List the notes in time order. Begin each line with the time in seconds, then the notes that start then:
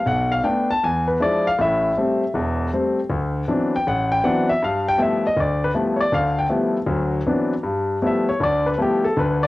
0.06 B1 F#5
0.32 F5
0.44 A3 B3 D4 G5
0.71 A5
0.84 E2 G#5
1.08 B4
1.20 F3 G#3 D4 E4 D5
1.47 F5
1.59 A1 A2 E5
1.97 G3 A3 C4
2.34 E1 E2
2.73 G3 A3 C4
3.10 D2
3.48 E3 F#3 B3 C4 D4
3.76 G5
3.87 A1 F#5
4.12 G5
4.24 E3 F#3 B3 C4 D4 F#5
4.49 E5
4.62 G2 F5
4.89 G5
4.98 F3 G3 A3 B3 E4
5.02 E5
5.27 D#5
5.37 D2 D5
5.64 B4
5.74 F3 G3 A3 B3 E4
5.96 C#5
6.00 D5
6.12 D2 D3 F5
6.39 G5
6.49 F3 G3 A3 B3 E4
6.86 D2 F#3
7.26 E3 F#3 B3 C4 D4
7.63 G2
8.02 F3 G3 A3 B3 E4
8.07 E5
8.29 C#5
8.40 D2 D3 D5
8.66 B4
8.78 F3 G3 A3 B3 E4
8.82 G4
9.04 A4
9.16 D2 D3 B4
9.43 D5